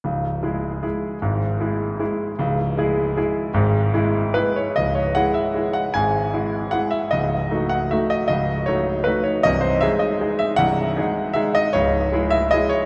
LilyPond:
\new Staff \with { instrumentName = "Grand piano" } { \time 3/4 \key cis \minor \tempo 4 = 154 << { r2. | r2. | r2. | r2 b'8 cis''8 |
dis''8 cis''8 fis''8 e''4 fis''8 | gis''2 fis''8 e''8 | dis''4. fis''8 e''8 dis''8 | dis''4 cis''4 b'8 cis''8 |
dis''8 bis'8 e''8 dis''4 e''8 | fis''2 e''8 dis''8 | cis''4. e''8 dis''8 cis''8 | } \\ { <cis,, cis,>4 <gis e' gis'>4 <gis e' gis'>4 | <gis,, gis,>4 <gis e' gis'>4 <gis e' gis'>4 | <cis,, cis,>4 <gis e' gis'>4 <gis e' gis'>4 | <gis,, gis,>4 <gis e' gis'>4 <gis e' gis'>4 |
<cis,, cis,>4 <gis e' gis'>4 <gis e' gis'>4 | <gis,, gis,>4 <gis e' gis'>4 <gis e' gis'>4 | <cis,, cis,>4 <a dis' fis'>4 <a dis' fis'>4 | <cis,, cis,>4 <a dis' fis'>4 <a dis' fis'>4 |
<bis,,, bis,,>4 <gis dis' gis'>4 <gis dis' gis'>4 | <bis,,, bis,,>4 <gis dis' gis'>4 <gis dis' gis'>4 | <cis,, cis,>4 <gis e' gis'>4 <gis e' gis'>4 | } >> }